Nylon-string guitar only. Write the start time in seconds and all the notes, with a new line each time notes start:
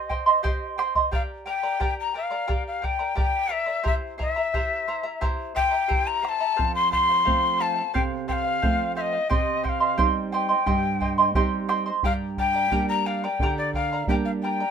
6.59 F2
7.26 F3 A3 C4
7.95 C3
8.63 F3 A3 C4
9.30 C3
9.98 G3 C4 D#4
10.66 G2
11.35 G3 C4 D#4
12.03 G2
12.71 G3 A#3 D4
13.40 D3
14.08 G3 A#3 D4